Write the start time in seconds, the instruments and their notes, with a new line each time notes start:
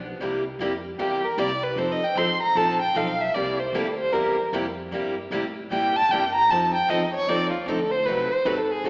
Already playing: upright bass B1
0.20 upright bass C2, steel-string acoustic guitar C3 G3 A#3 E4 G4
0.59 upright bass F2, steel-string acoustic guitar C3 G3 A#3 E4 G4
0.99 upright bass E2, steel-string acoustic guitar C3 G3 A#3 E4 G4, violin G4
1.24 violin A#4
1.38 upright bass C2, steel-string acoustic guitar C3 G3 A#3 E4 G4, violin D5
1.63 violin B4
1.76 upright bass F1, steel-string acoustic guitar F3 C4 D#4 A4, violin C5
1.92 violin D#5
2.01 violin G5, muted upright bass stroke
2.15 upright bass A1, steel-string acoustic guitar F3 C4 D#4 A4, violin C6
2.43 violin A#5
2.55 upright bass A#1, steel-string acoustic guitar F3 C4 D#4 A4, violin A5
2.82 violin G5
2.94 upright bass B1, steel-string acoustic guitar F3 C4 D#4 A4, violin F5
3.20 violin E5
3.34 upright bass C2, steel-string acoustic guitar C3 G3 A#3 E4 G4, violin D5
3.59 violin C5
3.73 upright bass D2, steel-string acoustic guitar C3 G3 A#3 E4 G4, violin A4
3.99 violin C5
4.12 upright bass E2, steel-string acoustic guitar C3 G3 A#3 E4 G4, violin A#4
4.53 upright bass F2, steel-string acoustic guitar C3 G3 A#3 E4 G4
4.91 upright bass G2, steel-string acoustic guitar C3 G3 A#3 E4 G4
5.31 upright bass A2, steel-string acoustic guitar C3 G3 A#3 E4 G4
5.70 upright bass A#2, steel-string acoustic guitar C3 G3 A#3 E4 G4, violin G5
5.96 violin A5
6.09 upright bass G2, steel-string acoustic guitar C3 G3 A#3 E4, violin G5
6.13 steel-string acoustic guitar G4
6.35 violin A#5
6.49 upright bass F2, steel-string acoustic guitar F3 C4 D#4 A4, violin A5
6.75 violin G5
6.88 upright bass E2, steel-string acoustic guitar F3 C4 D#4 A4, violin D#5
7.14 violin C#5
7.27 upright bass D#2, steel-string acoustic guitar F3 C4 D#4 A4, violin D5
7.52 violin F4
7.66 upright bass D2, steel-string acoustic guitar F3 C4 D#4 A4, violin A4
7.91 violin C5
8.06 upright bass C2, steel-string acoustic guitar C3 F#3 A3 C4 D#4 F#4 A4, violin B4
8.31 violin C5, muted upright bass stroke
8.45 upright bass G#1, steel-string acoustic guitar C3 F#3 A3 C4 D#4 F#4 A4, violin B4
8.58 violin A4
8.71 violin G#4
8.84 upright bass A1, steel-string acoustic guitar C3 F#3 A3 C4 D#4 A4, violin A4